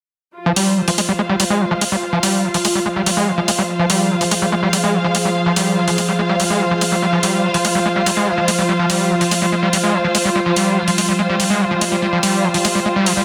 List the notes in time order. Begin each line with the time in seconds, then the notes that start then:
0.36 F3 F4
0.46 F3 C5
0.56 G3, open hi-hat
0.77 F3
0.88 F3 F5, open hi-hat
0.98 G#3, open hi-hat
1.09 G3
1.19 G#3
1.29 G3
1.40 G3, open hi-hat
1.50 G#3
1.61 F3
1.71 F3
1.81 G#3, open hi-hat
1.92 G3
2.13 F3
2.23 G3, open hi-hat
2.44 F3
2.54 F3, open hi-hat
2.65 G#3, open hi-hat
2.75 G3
2.86 G#3
2.96 G3
3.06 G3, open hi-hat
3.17 G#3
3.27 F3
3.38 F3
3.48 G#3, open hi-hat
3.58 G3
3.69 G#4
3.79 F3
3.90 G3, open hi-hat
4.11 F3
4.21 F3, open hi-hat
4.31 G#3, open hi-hat
4.42 G3
4.52 G#3
4.63 G3
4.73 G3, open hi-hat
4.83 G#3
4.94 F3
5.04 F3
5.15 G#3, open hi-hat
5.25 G3
5.46 F3
5.56 G3, open hi-hat
5.77 F3
5.88 F3, open hi-hat
5.98 G#3, open hi-hat
6.08 G3
6.19 G#3
6.29 G3
6.40 G3, open hi-hat
6.50 G#3
6.61 F3
6.71 F3
6.81 G#3, open hi-hat
6.92 G3
7.02 G3 F4
7.13 F3
7.23 G3, open hi-hat
7.44 F3
7.54 F3, open hi-hat
7.65 G#3, open hi-hat
7.75 G3
7.86 G#3
7.96 G3
8.06 G3, open hi-hat
8.17 G#3
8.27 F3
8.38 F3
8.48 G#3, open hi-hat
8.58 G3
8.69 G3
8.79 F3
8.90 G3, open hi-hat
9.11 F3
9.21 F3, open hi-hat
9.31 G#3, open hi-hat
9.42 G3
9.52 G#3
9.63 G3
9.73 G3, open hi-hat
9.84 G#3
9.94 F3
10.04 F3
10.15 G#3, open hi-hat
10.25 G3
10.36 G3
10.46 F3
10.56 G3, open hi-hat
10.77 F3
10.88 F3, open hi-hat
10.98 G#3, open hi-hat
11.08 G3
11.19 G#3
11.29 G3
11.40 G3, open hi-hat
11.50 G#3
11.61 F3
11.71 F3
11.81 G#3, open hi-hat
11.92 G3
12.02 G3
12.13 F3
12.23 G3, open hi-hat
12.44 F3
12.54 F3, open hi-hat
12.65 G#3, open hi-hat
12.75 G3
12.86 G#3
12.96 G3
13.06 F3, open hi-hat
13.17 G3